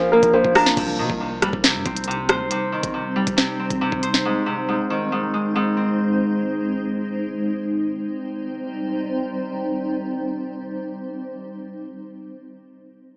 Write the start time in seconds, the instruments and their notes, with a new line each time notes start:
Already playing: 808-style bass A#1, harp A#2 F3 A#3 D4, ambient pad F3 A#3 D4 A#4, synth pluck G#5
0.12 harp A#3, grand piano A#4
0.23 808-style bass A#1, kick, closed hi-hat
0.33 harp A#2, grand piano C5
0.44 808-style bass A#1, kick
0.55 harp D4, synth pluck A#5, cross-stick, open hi-hat
0.66 snare
0.77 808-style bass C2, harp C3, ambient pad G3 C4 D#4 C5, kick, closed hi-hat, crash
0.99 808-style bass C3, harp D#3
1.10 808-style bass C2, kick
1.21 harp C3
1.42 808-style bass C2, harp G3, cross-stick, closed hi-hat
1.53 808-style bass C2, kick
1.64 harp C3, snare, closed hi-hat
1.75 808-style bass G2
1.86 808-style bass C2, harp C4, kick, closed hi-hat
1.97 closed hi-hat
2.04 harp C3, closed hi-hat
2.11 closed hi-hat
2.29 808-style bass D#2, harp C5, cross-stick, closed hi-hat
2.40 808-style bass C2
2.51 harp C3, closed hi-hat
2.72 harp D#3
2.83 kick, closed hi-hat
2.94 harp C3
3.16 harp G3
3.27 kick, closed hi-hat
3.37 harp C3, snare, closed hi-hat
3.59 harp C4
3.70 kick, closed hi-hat
3.81 harp C3
3.92 kick
4.03 harp C5, closed hi-hat
4.14 snare
4.25 harp G#2, ambient pad G#3
4.46 harp C3
4.68 harp G#2
4.90 harp D#3
5.12 harp G#2
5.34 harp G#3
5.55 harp G#2
5.77 harp C4
7.73 ambient pad G3 C4 D#4 C5